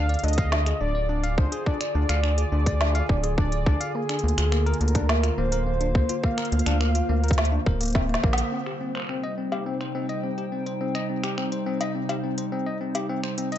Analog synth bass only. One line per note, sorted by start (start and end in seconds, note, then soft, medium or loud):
0.00 0.16 D2 medium
0.24 0.73 D2 medium
0.81 1.39 D1 loud
1.38 1.47 D2 medium
1.95 2.04 D2 loud
2.09 2.44 D2 medium
2.52 3.01 D2 loud
3.09 3.68 D1 loud
3.66 3.76 D2 medium
4.24 4.33 D2 loud
4.38 4.73 D2 medium
4.81 5.30 D2 loud
5.38 5.96 D1 loud
5.95 6.04 D2 medium
6.52 6.62 D2 loud
6.66 7.01 D2 medium
7.09 7.59 D2 loud
7.66 8.16 D1 loud
8.24 8.42 A#1 medium